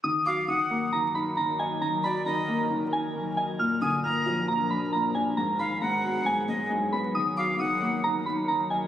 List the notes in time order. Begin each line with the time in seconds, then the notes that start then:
0.04 D#3 F#3 D#4 A#4 D#6
0.26 F#3 F5 D6
0.48 D#3 F#5 D#6
0.70 A#3
0.93 D#3 A#5
1.15 D#4 B5
1.37 D#3 A#5
1.59 D#5 G#5
1.81 D#3 A#5
2.04 F#3 D5 B5
2.26 D#3 D#5 A#5
2.48 A#3
2.70 D#3
2.92 D#4 G#5
3.15 D#3
3.37 D#5 G#5
3.59 A#2 F3 D4 F6
3.81 D3 G#5 D#6
4.04 A#2 A#5 F6
4.26 F3
4.48 A#2 A#5
4.70 A#3 B5
4.93 A#2 A#5
5.15 D4 G#5
5.37 G#2 F#3 B3 G#4 A#5
5.59 D#3 F5 B5
5.81 G#2 F#5 A#5
6.03 F#3
6.26 G#2 G#5
6.48 G#3 D#5
6.71 G#2
6.93 B3 B5
7.15 D#3 D#4 A#4 D#6
7.37 F#3 F5 D6
7.59 D#3 F#5 D#6
7.82 A#3
8.04 D#3 A#5
8.26 D#4 B5
8.48 D#3 A#5
8.70 D#5 G#5